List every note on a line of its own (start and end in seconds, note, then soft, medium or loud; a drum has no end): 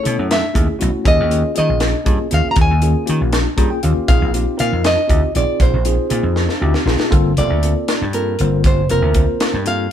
0.00 0.44 A3 medium
0.00 0.45 C#4 medium
0.00 0.45 E4 medium
0.00 0.45 A4 medium
0.00 0.27 C#5 medium
0.05 0.17 B2 medium
0.05 closed hi-hat medium
0.19 0.41 F#2 medium
0.31 0.84 E5 medium
0.31 snare loud
0.31 closed hi-hat medium
0.53 0.66 D#2 medium
0.53 0.75 A3 medium
0.53 0.75 C#4 medium
0.53 0.75 E4 medium
0.53 0.75 G#4 medium
0.53 kick medium
0.53 closed hi-hat medium
0.79 0.92 B1 medium
0.79 1.05 A3 medium
0.79 1.03 C#4 medium
0.79 1.05 E4 medium
0.79 1.05 F#4 medium
0.79 closed hi-hat medium
1.04 1.17 D#2 medium
1.04 1.25 A#3 medium
1.04 1.25 C#4 medium
1.04 1.26 F4 medium
1.04 1.26 G#4 medium
1.04 1.57 D#5 medium
1.04 kick loud
1.04 closed hi-hat medium
1.20 1.42 D#2 medium
1.29 1.51 A#3 medium
1.29 1.50 C#4 medium
1.29 1.50 F4 medium
1.29 1.51 G#4 medium
1.29 closed hi-hat medium
1.54 1.96 A#3 medium
1.54 1.96 C#4 medium
1.54 1.96 F4 medium
1.54 1.96 G#4 medium
1.54 2.34 D#5 medium
1.54 closed hi-hat medium
1.58 1.69 D#3 medium
1.69 1.92 A#1 medium
1.80 snare loud
1.80 closed hi-hat medium
2.04 2.18 G2 medium
2.04 2.26 A#3 medium
2.04 2.26 C#4 medium
2.04 2.26 F4 medium
2.04 2.26 G#4 medium
2.04 kick medium
2.04 closed hi-hat medium
2.31 2.44 D#2 medium
2.31 2.72 A#3 medium
2.31 2.72 C#4 medium
2.31 2.72 F4 medium
2.31 2.72 G#4 medium
2.31 2.51 F5 medium
2.31 closed hi-hat medium
2.45 muted slap bass stroke soft
2.51 2.58 A#5 medium
2.56 2.68 D#2 medium
2.56 kick loud
2.56 closed hi-hat medium
2.61 3.12 G#5 medium
2.70 2.93 D#2 medium
2.82 3.03 A#3 medium
2.82 3.03 C#4 medium
2.82 3.03 F4 medium
2.82 3.03 G#4 medium
2.82 closed hi-hat medium
3.06 3.20 D#3 medium
3.06 3.47 A#3 medium
3.06 3.48 C#4 medium
3.06 3.48 F4 medium
3.06 3.48 G4 medium
3.06 closed hi-hat medium
3.21 3.43 A#1 medium
3.33 snare loud
3.33 closed hi-hat medium
3.57 3.69 G2 medium
3.57 3.78 A#3 medium
3.57 3.78 C#4 medium
3.57 3.78 F4 medium
3.57 3.78 G#4 medium
3.57 3.70 A#5 medium
3.57 kick medium
3.57 closed hi-hat medium
3.70 3.83 G5 medium
3.83 3.95 D#2 medium
3.83 4.09 A#3 medium
3.83 4.09 C#4 medium
3.83 4.07 F4 medium
3.83 4.09 G4 medium
3.83 4.07 F5 medium
3.83 closed hi-hat medium
3.97 muted slap bass stroke soft
4.08 4.20 A#1 medium
4.08 4.29 C4 medium
4.08 4.29 D#4 medium
4.08 4.29 F4 medium
4.08 4.29 G#4 medium
4.08 4.59 F5 loud
4.08 kick loud
4.08 closed hi-hat medium
4.21 4.44 A#1 medium
4.34 4.55 C4 medium
4.34 4.55 D#4 medium
4.34 4.55 F4 medium
4.34 4.55 G4 medium
4.34 closed hi-hat medium
4.57 4.71 A#2 medium
4.57 4.99 C4 medium
4.57 4.99 D#4 medium
4.57 4.99 F4 medium
4.57 4.99 A#4 medium
4.57 4.86 F5 medium
4.57 closed hi-hat medium
4.72 4.95 F2 medium
4.84 5.36 D#5 medium
4.84 snare loud
4.84 closed hi-hat medium
5.07 5.21 D2 medium
5.07 5.29 C4 medium
5.07 5.29 D#4 medium
5.07 5.29 F4 medium
5.07 5.30 G4 medium
5.07 kick medium
5.07 closed hi-hat medium
5.35 5.47 A#1 medium
5.35 5.76 C4 medium
5.35 5.76 D#4 medium
5.35 5.76 F4 medium
5.35 5.76 G#4 medium
5.35 5.62 D5 medium
5.35 closed hi-hat medium
5.60 5.72 A#1 medium
5.60 6.59 C5 medium
5.60 kick medium
5.60 closed hi-hat medium
5.73 5.96 A#1 medium
5.85 6.06 C4 medium
5.85 6.06 D#4 medium
5.85 6.06 F4 medium
5.85 6.06 G#4 medium
5.85 closed hi-hat medium
6.09 6.22 A#2 medium
6.09 6.51 C4 medium
6.09 6.51 D#4 medium
6.09 6.51 F4 medium
6.09 6.51 G#4 medium
6.09 closed hi-hat medium
6.23 6.46 F2 medium
6.36 snare medium
6.49 snare soft
6.60 6.73 D2 medium
6.60 6.81 C4 medium
6.60 6.82 D#4 medium
6.60 6.82 F4 medium
6.60 6.82 G4 medium
6.74 snare medium
6.85 6.97 A#1 medium
6.85 7.10 C4 medium
6.85 7.12 D#4 medium
6.85 7.10 F4 medium
6.85 7.12 G#4 medium
6.85 snare medium
7.00 snare medium
7.10 7.35 G1 medium
7.10 7.32 A#3 medium
7.10 7.32 C4 medium
7.10 7.32 F4 medium
7.10 7.32 A4 medium
7.10 kick medium
7.10 closed hi-hat medium
7.37 7.49 F1 medium
7.37 7.58 A#3 medium
7.37 7.58 C4 medium
7.37 7.58 F4 medium
7.37 7.58 A4 medium
7.37 8.10 D5 medium
7.37 closed hi-hat medium
7.50 7.73 D2 medium
7.63 8.04 A#3 medium
7.63 8.04 C4 medium
7.63 8.04 F4 medium
7.63 8.04 A4 medium
7.63 closed hi-hat medium
7.88 snare loud
7.88 closed hi-hat medium
8.02 8.35 G2 medium
8.13 8.34 A#3 medium
8.13 8.34 C4 medium
8.13 8.34 F4 medium
8.13 8.34 A4 medium
8.13 8.61 A#4 medium
8.13 closed hi-hat medium
8.39 8.62 G1 medium
8.39 8.80 A#3 medium
8.39 8.80 C4 medium
8.39 8.80 F4 medium
8.39 8.81 C5 medium
8.39 closed hi-hat medium
8.64 8.87 G1 medium
8.64 8.90 C5 medium
8.64 kick medium
8.64 closed hi-hat medium
8.89 9.01 F1 medium
8.89 9.10 A#3 medium
8.89 9.10 C4 medium
8.89 9.11 F4 medium
8.89 9.62 A#4 medium
8.89 9.11 C5 medium
8.89 closed hi-hat medium
9.02 9.25 D2 medium
9.14 9.55 A#3 medium
9.14 9.55 C4 medium
9.14 9.55 F4 medium
9.14 9.56 C5 medium
9.14 kick medium
9.14 closed hi-hat medium
9.40 snare loud
9.40 closed hi-hat medium
9.54 9.87 G2 medium
9.65 9.86 A#3 medium
9.65 9.86 C4 medium
9.65 9.86 F4 medium
9.65 9.86 A4 medium
9.65 9.92 F5 medium
9.65 closed hi-hat medium